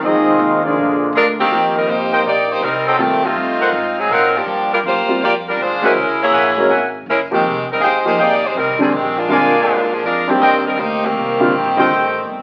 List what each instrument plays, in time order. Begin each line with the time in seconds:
Already playing: trombone section D#3 C4
0.02 upright bass F2, trombone section G#3 C4 D#4 F4, trumpet section C4 F4 G#4 D#5
0.15 upright bass D#2
0.28 upright bass C2
0.39 upright bass D#2
0.64 trombone section F3 G#3 D4, trumpet section A#3 F4 G#4 D5
0.76 upright bass A#1, trombone section D3 A#3
1.13 upright bass D2, saxophone section G#3 D4 F4 A#4
1.39 saxophone section D#3 A#3 C4 G4
1.50 upright bass D#2, upright piano F3 A#3 D#4 G4
1.76 saxophone section G3 C4 D#4 A#4
1.87 upright bass G#1, saxophone section A#3 D#4 G4 C5
2.12 trumpet section A#4 C5 D#5 G5
2.24 upright bass A#1, saxophone section A#3 D#4 G4 D5
2.50 saxophone section A#3 D#4 G4 C5
2.61 upright bass C2, saxophone section G3 C4 D#4 A#4
2.86 saxophone section F#3 C4 D#4 A4, trumpet section A4 C5 D#5 G5
2.99 upright bass D#2, saxophone section D#3 A3 C4 G4, upright piano G3 C4 F4 A4
3.24 saxophone section A3 C4 D#4 F4
3.36 upright bass G2
3.60 trumpet section A#4 C5 F5 F#5
3.72 upright bass G#2
3.99 saxophone section F#3 C4 D#4 G#4
4.09 upright bass A#2, saxophone section F#3 C4 D#4 A#4, trumpet section A#4 C5 F5 F#5
4.36 saxophone section F3 A#3 D4 G4
4.46 upright bass G2
4.73 saxophone section G3 D4 F4 A#4
4.83 upright bass F#2, saxophone section A#3 F4 G4 C5
5.07 upright piano G3 C4 F4 A#4, muted upright bass stroke
5.20 upright bass F2, saxophone section A#3 F4 G4 D5
5.48 saxophone section G3 D4 F4 A#4
5.57 upright bass D#2
5.61 saxophone section G#3 D4 F4 C5
5.82 upright piano G#3 C#4 F#4 C5, trumpet section A#4 E5 F#5 G#5
5.86 saxophone section G#3 C#4 E4 A#4
5.94 upright bass C#2
6.23 saxophone section A#3 E4 G#4 C#5
6.31 upright bass A#1, trumpet section A#4 E5 F#5 G#5
6.57 upright piano G#3 C#4 F#4 A#4
6.69 upright bass G#1, trumpet section A#4 E5 F#5 G#5
7.06 upright bass F#1, saxophone section G#3 C#4 E4 A#4
7.31 saxophone section D#3 G#3 C4 G4, upright piano F3 A#3 D#4 G4
7.43 upright bass F1
7.67 muted upright bass stroke
7.71 saxophone section G3 C4 D#4 A#4
7.80 upright bass G1, saxophone section G#3 D#4 G4 C5, trumpet section G#4 D#5 F5 G5
8.05 upright piano F3 A#3 D#4 G4, saxophone section G#3 D#4 G4 C5
8.17 upright bass G#1, saxophone section G4, trumpet section G#4 D#5 F5 G5
8.22 saxophone section A#3 D#4 D5
8.45 saxophone section G#3 D#4 G4 C5
8.55 upright bass C2, saxophone section G3 C4 D#4 A#4
8.67 upright bass G#1
8.79 upright bass F1, upright piano D3 G3 C4 D4, saxophone section D#3 G3 C4 G#4
8.92 upright bass A#1, saxophone section D#3 G#3 C4 G4
9.18 saxophone section G#3 A#3 D4 F4
9.28 upright bass A#2, upright piano D3 G3 C4 F4, trumpet section A#4 D5 F5 G#5
9.66 upright bass G#2
9.93 saxophone section F3 A#3 D4 G#4
10.03 upright bass F2, saxophone section G#3 D4 F4 A#4
10.28 saxophone section D#3 A#3 C4 G4, upright piano G3 C4 D4 G4
10.40 upright bass D#2, trumpet section A#4 C5 D#5 G5
10.67 saxophone section G3 C4 D#4 A#4
10.77 upright bass D2, saxophone section A#3 D#4 G4 C5
11.03 trombone section A#2 C3 G3, saxophone section D#3 A#3 C4 G4
11.14 upright bass C2
11.40 upright piano D3 G3 C4 F4
11.51 upright bass A#1
11.76 upright piano D3 G3 C4 F4, trumpet section A4 C5 D#5 G5
11.89 upright bass A1
12.25 upright bass G1